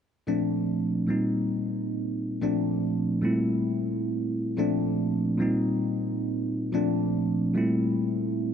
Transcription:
tine electric piano
0.27 A#2 F3 A3 C4 D4
1.07 A#2 G3 A#3 C4 D#4
2.41 A#2 F3 A3 C4 D4
3.21 A#2 G3 A3 C4 E4
4.57 A#2 F3 A3 C4 D4
5.38 A#2 G3 A#3 C4
5.42 D#4
6.73 A#2 F3 A3 C4 D4
7.54 A#2 G3 A3 C4 E4

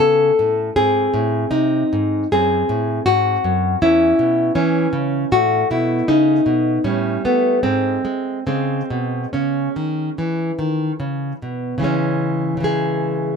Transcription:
nylon-string guitar
Already playing: C#4
0.00 C#3 A4
0.39 A2
0.76 G#2 C4 G#4
1.14 A2
1.51 C3 D#4
1.93 G#2
2.32 F#2 C4 G#4
2.69 A2
3.06 G#2 F#4
3.44 F#2
3.82 E2 C#4 E4
4.19 B2
4.55 E3 C#4
4.93 C#3
5.32 A2 A3 F#4
5.71 B2 E4
6.08 C#3 D#4
6.46 B2
6.84 A2 G3 C#4
7.25 A3 B3
7.63 G#2 G#3 C4
8.05 G#3
8.47 C#3 G#3 C4
8.90 B2
9.33 C#3 C#4
9.76 D#3
10.18 E3
10.59 D#3
11.00 C#3
11.42 B2
11.78 C#3 E3
11.83 G#3 C#4
12.57 C#3 E3
12.63 G#3 G#4

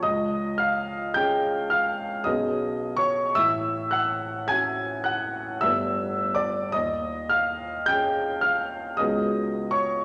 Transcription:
grand piano
0.03 C#2 D#5 D#6
0.58 F5 F6
1.14 C#4 G#4 G5 G6
1.70 F5 F6
2.24 B1 F#3 B3 C#4 G#4 D#5 D#6
2.97 C#5 C#6
3.35 A1 E5 E6
3.91 F#5 F#6
4.48 C#4 F#4 G#5 G#6
5.04 F#5 F#6
5.61 G1 A3 B3 D4 E5 E6
5.65 G4
6.35 D5 D6
6.72 D#2 D#5 D#6
7.29 F5 F6
7.86 C#4 G#4 G5 G6
8.41 F5 F6
8.97 C#2 F#3 B3 C#4 G#4 D#5 D#6
9.01 G#4
9.71 C#5 C#6

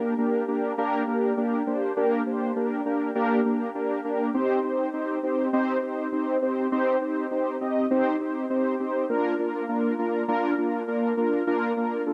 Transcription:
analog polysynth
Already playing: A#3 D4 G4 A#4
0.18 A#3 D4 G4 A#4
0.48 A#3 D4 G4 A#4
0.78 A#3 D4 G4 A#4
1.08 A#3 D4 G4 A#4
1.37 A#3 D4 G4 A#4
1.67 A#3 D4 G4 C5
1.97 A#3 D4 G4 A#4
2.26 A#3 D4 G4 C5
2.56 A#3 D4 G4 A#4
2.86 A#3 D4 G4 A#4
3.15 A#3 D4 G4 A#4
3.45 A#3 D4 G4 A#4
3.75 A#3 D4 G4 A#4
4.05 A#3 D4 G4 A#4
4.34 C4 D#4 G4 C5
4.64 C4 D#4 G4 C5
4.94 C4 D#4 G4 C5
5.23 C4 D#4 G4 C5
5.53 C4 D#4 G4 C5
5.83 G4 C5
6.12 C4 D#4 G4 C5
6.42 C4 D#4 G4 C5
6.72 C4 D#4 G4 C5
7.01 C4 D#4 G4 C5
7.31 C4 D#4 G4 C5
7.61 C4 D#4 G4 D#5
7.91 C4 D#4 G4 C5
8.20 C4 D#4 G4 C5
8.50 C4 D#4 G4 C5
8.80 C4 D#4 G4 C5
9.09 A#3 D4 F4 A#4
9.39 A#3 D4 F4 A#4
9.69 A#3 D4 F4 A#4
9.99 A#3 D4 F4 A#4
10.28 A#3 D4 F4 A#4
10.58 A#3 D4 F4 A#4
10.88 A#3 D4 F4 A#4
11.17 A#3 D4 F4 A#4
11.47 A#3 D4 F4 A#4
11.77 A#3 D4 F4 A#4
12.06 A#3 D4 F4 A4

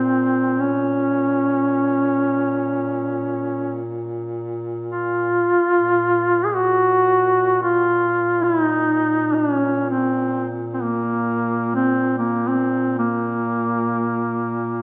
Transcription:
duduk
Already playing: A#2 C4
0.60 C#4
4.90 F4
5.75 A#2
6.45 G#4
6.55 F#4
7.63 F4
8.44 E4
8.62 D#4
9.34 D4
9.52 C#4
9.89 C4
10.73 C4
10.83 A#3
11.75 C4
12.18 A#3
12.48 C4
12.98 A#3

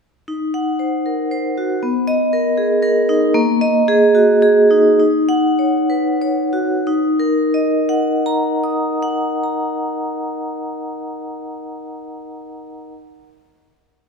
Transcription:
vibraphone
0.28 D#4
0.54 F#5
0.79 C5
1.06 A#4
1.31 C5
1.58 F#4
1.83 B3
2.08 D#5
2.33 A#4
2.58 G#4
2.82 A#4
3.09 D#4
3.34 A#3
3.61 D#5
3.88 G#4
4.15 F#4
4.42 G#4
4.70 D#4
5.00 D#4
5.29 F#5
5.59 C#5
5.90 B4
6.22 C#5
6.53 F#4
6.87 D#4
7.20 A#4
7.54 D#5
7.89 F#5
8.26 A#5
8.64 D#6
9.02 F#5
9.44 A#5

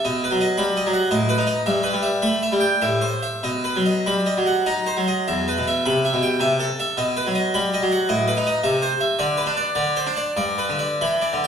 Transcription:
harpsichord
0.05 B2 D#5
0.24 B4
0.31 F#3
0.41 D#5
0.58 G3 B5
0.77 D#5
0.87 F#3
0.93 F#5
1.11 A2 D#5
1.29 B4
1.38 D#4
1.47 D#5
1.66 G2 E5
1.83 B4
1.93 G3
2.03 E5
2.22 A3 B5
2.43 E5
2.52 G3
2.60 G5
2.82 A2 E5
3.01 C5
3.23 E5
3.43 B2 D#5
3.64 B4
3.76 F#3
3.86 D#5
4.06 G3 B5
4.26 D#5
4.37 F#3
4.46 F#5
4.66 D#4 D#5
4.86 C5
4.97 F#3
5.08 D#5
5.28 E2 E5
5.48 B4
5.58 B2
5.67 E5
5.86 C3 B5
6.05 E5
6.13 B2
6.22 G5
6.40 C3 E5
6.60 A4
6.80 E5
6.97 B2 D#5
7.17 B4
7.27 F#3
7.35 D#5
7.54 G3 B5
7.74 D#5
7.82 F#3
7.92 F#5
8.09 A2 D#5
8.28 B4
8.37 D#4
8.47 D#5
8.64 C3 E5
8.82 C5
9.01 E5
9.19 D3 D5
9.37 B4
9.46 D4
9.57 D5
9.75 D3 D5
9.96 C5
10.07 D4
10.16 D5
10.37 G2 D5
10.58 B4
10.69 D3
10.79 D5
11.01 E3 B5
11.21 D5
11.33 D3
11.44 G5

